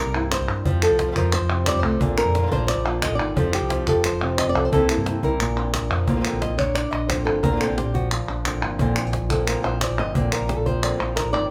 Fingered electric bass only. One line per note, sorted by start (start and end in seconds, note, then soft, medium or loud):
0.06 0.33 C2 medium
0.41 0.47 C2 medium
0.49 0.62 G2 medium
0.66 0.85 F2 medium
0.91 1.10 C2 medium
1.16 1.36 F2 medium
1.41 1.68 F2 medium
1.75 1.82 F2 medium
1.83 1.97 C2 medium
2.00 2.20 A#1 medium
2.26 2.46 F2 medium
2.51 2.71 A#1 medium
2.77 3.03 A#1 medium
3.11 3.17 A#1 medium
3.19 3.33 G1 loud
3.37 3.56 F1 loud
3.62 3.82 C2 medium
3.87 4.07 F1 medium
4.12 4.39 F1 medium
4.46 4.53 F1 medium
4.55 4.68 C2 loud
4.72 4.92 C2 loud
4.97 5.17 G2 medium
5.22 5.36 C2 medium
5.40 5.47 A#1 loud
5.48 5.75 A#1 medium
5.82 5.89 A#1 medium
5.90 6.04 F2 medium
6.07 6.21 A#1 medium
6.33 6.46 A#1 medium
6.50 6.83 A#1 medium
6.93 7.12 A#1 medium
7.18 7.25 A#1 medium
7.26 7.40 G1 medium
7.43 7.57 A#1 medium
7.69 7.83 A#1 medium
7.86 8.19 A#1 medium
8.29 8.48 A#1 medium
8.54 8.61 A#1 medium
8.63 8.76 G1 medium
8.80 8.93 A#1 medium
9.05 9.18 A#1 medium
9.21 9.55 A#1 medium
9.64 9.84 A#1 medium
9.90 9.97 A#1 medium
9.99 10.12 G1 medium
10.16 10.29 A#1 medium
10.41 10.54 A#1 medium
10.58 10.91 A#1 medium
11.00 11.20 A#1 medium
11.26 11.32 A#1 medium
11.34 11.47 G1 medium